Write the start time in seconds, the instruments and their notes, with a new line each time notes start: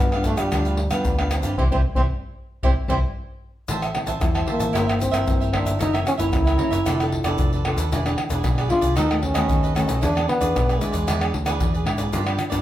Already playing: trombone B3, cavaquinho G4 B4 F5
0.00 picked electric bass G2, nylon-string guitar D3
0.12 nylon-string guitar F3 B3, cavaquinho G4 B4 F5, pandeiro, tamborim, shaker
0.16 nylon-string guitar D4
0.24 trombone A3, cavaquinho D4 G4 B4, pandeiro, shaker, surdo
0.28 cavaquinho F5
0.37 picked electric bass G2, trombone G3, cavaquinho G4 B4 F5, pandeiro, tamborim, shaker
0.52 picked electric bass D2, nylon-string guitar G2 F3 B3 D4, cavaquinho D4 G4 B4 F5, pandeiro, tamborim, shaker, surdo
0.65 cavaquinho G4 B4 F5, pandeiro, shaker
0.77 muted cavaquinho stroke, pandeiro
0.90 nylon-string guitar F3 B3 D4, picked electric bass G3, trombone B3, cavaquinho G4 B4 F5, pandeiro, tamborim, shaker
1.05 picked electric bass D2, nylon-string guitar D3, pandeiro, shaker, surdo
1.18 nylon-string guitar F3 B3 D4, cavaquinho G4 B4 F5, pandeiro, tamborim, shaker
1.31 trombone C4, cavaquinho D4 G4 B4 F5, pandeiro, tamborim, shaker
1.43 picked electric bass G2, nylon-string guitar G3 D4 E4, cavaquinho G4 B4 F5, pandeiro, shaker
1.57 picked electric bass C2, nylon-string guitar E3 G3 C4, trombone C4, cavaquinho E4 G4 C5, surdo
1.71 picked electric bass C2, nylon-string guitar E3 G3 C4, trombone C4, cavaquinho E4 G4 C5, surdo
1.95 picked electric bass C2, nylon-string guitar E3 G3 C4, trombone C4, cavaquinho E4 G4 C5, surdo
2.63 picked electric bass C2, nylon-string guitar E3 G3 C4, trombone C4, cavaquinho E4 G4 C5, surdo
2.88 picked electric bass C2, nylon-string guitar E3 G3 C4, trombone C4, cavaquinho E4 G4 C5, surdo
3.68 picked electric bass A1, nylon-string guitar A2, cavaquinho G4 C5 E5 A5, pandeiro, shaker, surdo
3.82 cavaquinho C5 E5 A5, pandeiro, tamborim, shaker
3.94 nylon-string guitar G3 C4 E4, muted cavaquinho stroke, pandeiro, tamborim
4.06 picked electric bass A1, cavaquinho C5 E5 A5, pandeiro, shaker, surdo
4.21 picked electric bass E2, nylon-string guitar E3 G3 C4 E4, pandeiro, tamborim, shaker, surdo
4.35 cavaquinho C5 E5 A5, pandeiro, tamborim, shaker
4.47 trombone A#3, cavaquinho G4 C5 E5 A5, pandeiro
4.59 picked electric bass A1, cavaquinho C5 E5 A5, pandeiro, shaker, surdo
4.73 picked electric bass G1, nylon-string guitar G2 E3 A#3 C4, cavaquinho E4 A#4 C5 E5, pandeiro, tamborim, shaker, surdo
4.86 cavaquinho A#4 C5 E5, pandeiro, tamborim, shaker
4.99 trombone C4, muted cavaquinho stroke, pandeiro, shaker, surdo
5.11 picked electric bass G1, nylon-string guitar E3 A#3 C4, cavaquinho A#4 C5 E5, pandeiro, tamborim, shaker
5.27 picked electric bass G1, nylon-string guitar G2, pandeiro, shaker, surdo
5.40 cavaquinho A#4 C5 E5, pandeiro, shaker
5.52 nylon-string guitar E3 A#3 C4, trombone D4, cavaquinho E4 A#4 C5 E5, pandeiro, tamborim
5.65 picked electric bass G1, cavaquinho A#4 C5 E5, pandeiro, shaker, surdo
5.79 picked electric bass F#1, nylon-string guitar F#2 E3 A#3 C#4, trombone D#4, cavaquinho F#4 A#4 C#5 E5, pandeiro, shaker, surdo
5.93 nylon-string guitar E3 A#3 C#4, cavaquinho A#4 C#5 E5, pandeiro, tamborim, shaker
6.05 trombone C#4, muted cavaquinho stroke, pandeiro, tamborim, shaker
6.18 picked electric bass F#1, nylon-string guitar E3 A#3 C#4, trombone E4, cavaquinho A#4 C#5 E5, pandeiro, shaker, surdo
6.33 picked electric bass C#2, nylon-string guitar C#3, pandeiro, tamborim, shaker, surdo
6.46 cavaquinho A#4 C#5 E5, pandeiro, tamborim, shaker
6.58 nylon-string guitar E3 A#3 C#4, cavaquinho F#4 A#4 C#5 E5, pandeiro
6.71 picked electric bass F#1, cavaquinho A#4 C#5 E5, pandeiro, shaker, surdo
6.85 picked electric bass F1, nylon-string guitar F3 B3 D4 A4, cavaquinho F4 A4 B4 D5, pandeiro, tamborim, shaker, surdo
6.99 nylon-string guitar B3 D4 A4, cavaquinho A4 B4 D5, pandeiro, tamborim, shaker
7.12 muted cavaquinho stroke, pandeiro, surdo
7.24 picked electric bass F1, nylon-string guitar B3 D4 A4, cavaquinho A4 B4 D5, pandeiro, tamborim, shaker
7.38 picked electric bass F1, nylon-string guitar F3, pandeiro, shaker, surdo
7.53 cavaquinho A4 B4 D5, pandeiro, shaker
7.65 nylon-string guitar B3 D4 A4, cavaquinho F4 A4 B4 D5, pandeiro, tamborim
7.77 picked electric bass D#2, cavaquinho A4 B4 D5, pandeiro, shaker, surdo
7.91 picked electric bass E1, nylon-string guitar E3 B3 D4 G#4, cavaquinho E4 G#4 B4 D5, pandeiro, shaker, surdo
8.05 nylon-string guitar B3 D4 G#4, cavaquinho G#4 B4 D5, pandeiro, tamborim, shaker
8.17 muted cavaquinho stroke, pandeiro, tamborim
8.30 picked electric bass E1, nylon-string guitar B3 D4 G#4, cavaquinho G#4 B4 D5, pandeiro, shaker, surdo
8.44 picked electric bass B1, nylon-string guitar B2, pandeiro, tamborim, shaker, surdo
8.58 cavaquinho G#4 B4 D5, pandeiro, tamborim, shaker
8.69 nylon-string guitar B3 D4 G#4, cavaquinho E4 G#4 B4 D5, trombone F4, pandeiro, surdo
8.81 picked electric bass C2, cavaquinho G#4 B4 D5, pandeiro, shaker, surdo
8.96 picked electric bass D#2, nylon-string guitar D#3 A3 B3 F#4, cavaquinho D#4 A4 B4 D#5, trombone D#4, pandeiro, tamborim, shaker, surdo
9.08 nylon-string guitar A3 B3, cavaquinho A4 B4 D#5, pandeiro, tamborim, shaker
9.13 nylon-string guitar F#4
9.22 trombone C#4, muted cavaquinho stroke, pandeiro, surdo
9.34 picked electric bass D#2, nylon-string guitar A3 B3 F#4, cavaquinho A4 B4 D#5, pandeiro, tamborim, shaker
9.49 picked electric bass D#2, nylon-string guitar D#3, pandeiro, shaker, surdo
9.63 cavaquinho A4 B4 D#5, pandeiro, shaker
9.74 nylon-string guitar A3 B3 F#4, trombone C#4, cavaquinho D#4 A4 B4 D#5, pandeiro, tamborim, shaker
9.87 picked electric bass B1, cavaquinho A4 B4 D#5, pandeiro, shaker, surdo
10.01 picked electric bass E2, nylon-string guitar E3 B3 D4 G#4, trombone D4, cavaquinho E4 G#4 B4 D5, pandeiro, shaker, surdo
10.15 nylon-string guitar B3 D4 G#4, cavaquinho G#4 B4 D5, pandeiro, tamborim, shaker
10.28 trombone B3, muted cavaquinho stroke, pandeiro, tamborim
10.41 picked electric bass E2, nylon-string guitar B3 D4 G#4, cavaquinho G#4 B4 D5, pandeiro, shaker, surdo
10.55 picked electric bass B1, nylon-string guitar B2, pandeiro, tamborim, shaker, surdo
10.69 cavaquinho G#4 B4 D5, pandeiro, tamborim, shaker
10.81 trombone G#3, nylon-string guitar B3 D4 G#4, cavaquinho E4 G#4 B4 D5, pandeiro, shaker, surdo
10.92 picked electric bass E2, cavaquinho G#4 B4 D5, pandeiro, shaker, surdo
11.07 picked electric bass E2, nylon-string guitar E3, cavaquinho E4 G#4 B4 D5, pandeiro, tamborim, shaker, surdo
11.20 nylon-string guitar B3 D4 G#4, cavaquinho G#4 B4 D5, pandeiro, tamborim, shaker
11.34 picked electric bass D2, muted cavaquinho stroke, pandeiro, surdo
11.45 nylon-string guitar B3 D4 G#4, cavaquinho G#4 B4 D5, pandeiro, tamborim, shaker
11.60 picked electric bass E2, nylon-string guitar B2, pandeiro, shaker, surdo
11.74 cavaquinho G#4 B4 D5, pandeiro, shaker
11.85 picked electric bass G#2, nylon-string guitar B3 D4 G#4, cavaquinho E4 G#4 B4 D5, pandeiro, tamborim
11.98 cavaquinho G#4 B4 D5, pandeiro, shaker, surdo
12.12 nylon-string guitar G2 F3 B3 D4, picked electric bass G2, cavaquinho F4 G4 B4 D5, pandeiro, shaker, surdo
12.26 nylon-string guitar F3 B3 D4, cavaquinho G4 B4 D5, pandeiro, tamborim, shaker
12.38 muted cavaquinho stroke, pandeiro, tamborim, shaker
12.50 picked electric bass G2, nylon-string guitar F3 B3 D4, cavaquinho G4 B4 D5, pandeiro, shaker, surdo